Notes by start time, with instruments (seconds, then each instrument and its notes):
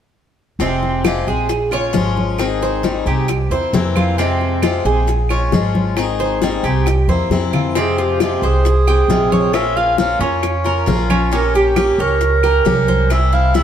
0.59 upright bass F1, steel-string acoustic guitar C3 F3 G#3 C4 G4, cuban tres C4, high bongo, high conga
0.82 high bongo, high conga
1.04 steel-string acoustic guitar C3 F3 G#3 C4 G4, cuban tres F4, high bongo, high conga, claves
1.26 upright bass A#1, steel-string acoustic guitar G#3 C4 G4, cuban tres G#4, high conga
1.49 muted steel-string acoustic guitar stroke, high bongo, high conga
1.71 steel-string acoustic guitar G#3 C#4 F4, cuban tres C#5, high bongo, high conga, claves
1.93 upright bass G#1, steel-string acoustic guitar F3 G#3 C#4 F4, high bongo, low bongo, high conga
2.17 high bongo, high conga
2.38 steel-string acoustic guitar D#3 C4 D#4 G#4, high bongo, high conga, claves
2.62 cuban tres C5, high bongo, high conga
2.83 steel-string acoustic guitar D#3 G3 C4 D#4 G#4, high bongo, high conga
3.06 upright bass C2, steel-string acoustic guitar C4 D#4 G#4, cuban tres G4, high conga
3.28 muted steel-string acoustic guitar stroke, high bongo, high conga, claves
3.50 upright bass E2, steel-string acoustic guitar A#3 C4 E4, cuban tres C5, high bongo, high conga
3.73 upright bass F2, steel-string acoustic guitar C3 E3 A#3 C4 E4, high bongo, low bongo, high conga
3.96 cuban tres F4, high bongo, high conga, claves
4.18 steel-string acoustic guitar C3 F3 G#3 C4 G4, cuban tres C4, high bongo, high conga
4.40 high bongo, high conga
4.62 steel-string acoustic guitar C3 F3 G#3 C4 G4, cuban tres F4, high bongo, high conga, claves
4.85 upright bass A#1, steel-string acoustic guitar G#3 C4 G4, cuban tres G#4, high conga
5.07 muted steel-string acoustic guitar stroke, high bongo, high conga
5.29 steel-string acoustic guitar G#3 C#4 F4, cuban tres C#5, high bongo, high conga, claves
5.52 upright bass G#1, steel-string acoustic guitar F3 G#3 C#4 F4, high bongo, low bongo, high conga
5.75 high bongo, high conga
5.97 steel-string acoustic guitar D#3 C4 D#4 G#4, high bongo, claves
6.19 cuban tres C5, high bongo, high conga
6.42 steel-string acoustic guitar D#3 G3 C4 D#4 G#4, high bongo, high conga
6.63 upright bass C2, steel-string acoustic guitar C4 D#4 G#4, cuban tres G4, high conga
6.86 muted steel-string acoustic guitar stroke, high bongo, high conga, claves
7.08 upright bass E2, steel-string acoustic guitar A#3 C4 E4, cuban tres C5, high bongo, high conga
7.30 upright bass F2, steel-string acoustic guitar C3 E3 A#3 C4 E4, high bongo, low bongo, high conga
7.53 cuban tres F4, high bongo, low conga, claves
7.75 steel-string acoustic guitar C3 F3 G#3 C4 G4, cuban tres C4, clarinet G#4, high bongo, high conga
7.98 cuban tres F4, clarinet G4, high bongo, high conga
8.20 steel-string acoustic guitar C3 F3 G#3 C4 G4, clarinet G4, high bongo, high conga, claves
8.42 upright bass C2, steel-string acoustic guitar G#3 C4 G4, clarinet G#4, cuban tres C5, high conga
8.65 muted steel-string acoustic guitar stroke, high bongo, high conga
8.87 steel-string acoustic guitar G#3 C4 G4, cuban tres G5, high bongo, high conga, claves
9.08 upright bass A#1, steel-string acoustic guitar C3 F3 G#3 C4, high bongo, low bongo, high conga
9.32 cuban tres C#5, high bongo, high conga
9.53 steel-string acoustic guitar F3 A#3 C#4 F4, clarinet E5, high bongo, high conga, claves
9.76 cuban tres F4, clarinet F5, high bongo, high conga
9.98 steel-string acoustic guitar F3 A#3 C#4 F4, clarinet F5, high bongo, high conga
10.19 upright bass F2, steel-string acoustic guitar A#3 C#4 F4, cuban tres C#4, clarinet C#5, high conga
10.43 muted steel-string acoustic guitar stroke, high bongo, high conga, claves
10.64 steel-string acoustic guitar A#3 C#4 F4, cuban tres A#4, high bongo, high conga
10.86 upright bass A#1, steel-string acoustic guitar F3 A#3 C#4 F4, high bongo, low bongo, high conga
11.10 cuban tres C#4, high bongo, high conga, claves
11.31 steel-string acoustic guitar A#3 C#4 G4, cuban tres C#4, clarinet A#4, high bongo
11.54 clarinet G4, cuban tres G4, high bongo, high conga
11.76 steel-string acoustic guitar A#3 C#4 G4, clarinet G4, high bongo, high conga, claves
11.98 upright bass C#2, steel-string acoustic guitar C#4 G4, clarinet A#4, cuban tres C#5, high conga
12.21 muted steel-string acoustic guitar stroke, high bongo, high conga
12.43 steel-string acoustic guitar C#4 G4, cuban tres A#4, high bongo, high conga, claves
12.65 upright bass C2, steel-string acoustic guitar A#3 C#4 G4, high bongo, low bongo, high conga
12.88 cuban tres C5, high bongo, high conga
13.10 steel-string acoustic guitar C3 E3 G3 C4 E4, clarinet E5, high bongo, claves
13.33 cuban tres E4, clarinet F5, high bongo, high conga
13.54 steel-string acoustic guitar C3 E3 G3 C4 E4, clarinet E5, high bongo, high conga